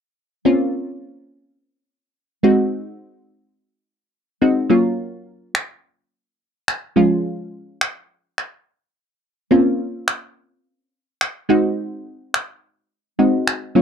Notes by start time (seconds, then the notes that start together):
0.45 A#3 C4 C#4 F4
2.43 G#3 C4 D#4 F#4
4.42 G#3 C4 D#4 F#4
4.70 F#3 A#3 C#4 F4
5.55 finger snap
6.68 finger snap
6.96 F3 G#3 C#4 F4
7.81 finger snap
8.38 finger snap
9.51 A#3 C4 C#4 F4
10.08 finger snap
11.21 finger snap
11.49 G#3 C4 D#4 F#4
12.34 finger snap
13.19 G#3 C4 D#4 F#4
13.47 finger snap
13.75 F#3 A#3 C#4 F4